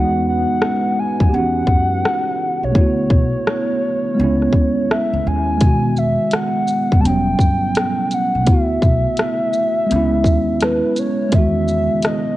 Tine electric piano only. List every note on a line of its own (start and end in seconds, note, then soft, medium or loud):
0.00 1.28 G#3 medium
0.00 1.29 B3 medium
0.00 1.31 D#4 medium
0.00 1.33 F#4 medium
1.29 2.72 B3 medium
1.29 2.71 G4 medium
1.35 2.74 C#4 medium
1.35 2.75 F#4 medium
2.72 4.13 A3 medium
2.72 4.15 B3 medium
2.78 4.17 E4 medium
2.78 4.18 F#4 medium
4.15 5.56 G#3 medium
4.15 5.58 B3 medium
4.21 5.59 C#4 medium
4.21 5.61 E4 medium
5.58 6.99 G#3 medium
5.58 7.01 B3 medium
5.64 7.02 D#3 medium
5.64 7.04 F#4 medium
7.00 8.42 G3 medium
7.00 8.44 B3 medium
7.06 8.47 F#3 medium
7.06 8.45 C#4 medium
8.43 9.85 A3 medium
8.43 9.87 B3 medium
8.50 9.88 E4 medium
8.50 9.90 F#4 medium
9.87 11.28 G#3 medium
9.87 11.30 B3 medium
9.93 11.31 C#4 medium
9.93 11.33 E4 medium
11.29 12.37 G#3 medium
11.29 12.37 B3 medium
11.35 12.37 D#3 medium
11.35 12.37 F#4 medium